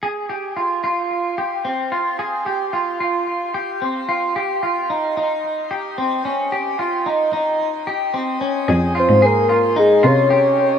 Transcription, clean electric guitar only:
\new Staff \with { instrumentName = "Clean electric guitar" } { \time 4/4 \key f \minor \tempo 4 = 111 aes'8 g'8 f'8 f'4 g'8 c'8 f'8 | aes'8 g'8 f'8 f'4 g'8 c'8 f'8 | g'8 f'8 ees'8 ees'4 g'8 c'8 des'8 | g'8 f'8 ees'8 ees'4 g'8 c'8 des'8 |
aes'8 f'8 aes'8 f'8 ees'8 f'8 g'4 | }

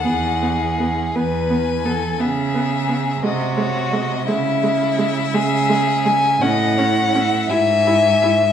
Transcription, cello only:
\new Staff \with { instrumentName = "Cello" } { \clef bass \time 6/8 \key e \major \tempo 4. = 56 e,4. e,4. | cis4. bis,4. | cis4. cis4. | a,4. gis,4. | }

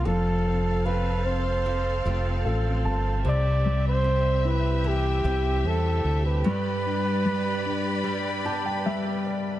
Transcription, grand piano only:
\new Staff \with { instrumentName = "Grand piano" } { \time 4/4 \key c \major \tempo 4 = 75 << { r2. a'8 a''8 | r1 | r2 r8 a''16 g''16 e''8 d''8 | } \\ { f8 c'8 f'8 c'4. f'4 | c8 g8 c'8 e'4. c'4 | g8 d'8 g8 d'4. g4 | } >> }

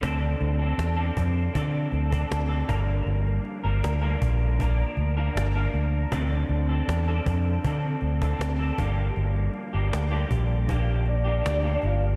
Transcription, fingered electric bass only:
\new Staff \with { instrumentName = "Fingered electric bass" } { \clef bass \time 4/4 \key d \minor \tempo 4 = 79 d,8 d,8 e,8 f,8 d8 d,8 d,8 g,,8 | g,,8 r16 g,,16 d,8 bes,,4 d,8 g,,8 d,8 | d,8 d,8 e,8 f,8 d8 d,8 d,8 g,,8 | g,,8 r16 g,,16 d,8 bes,,4. d,8 g,,8 | }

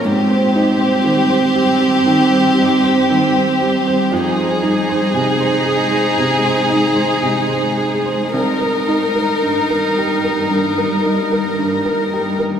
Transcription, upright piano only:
\new Staff \with { instrumentName = "Upright piano" } { \time 4/4 \key f \minor \tempo 4 = 58 aes,16 c''16 ees'16 c''16 ees16 c''16 g'16 c''16 ees16 c''16 ees'16 c''16 ees16 c''16 g'16 c''16 | f,16 c''16 ees'16 c''16 c16 c''16 aes'16 c''16 c16 c''16 ees'16 c''16 c16 c''16 aes'16 c''16 | c,16 bes'16 ees'16 bes'16 g,16 bes'16 g'16 bes'16 g,16 bes'16 ees'16 bes'16 g,16 bes'16 g'16 bes'16 | }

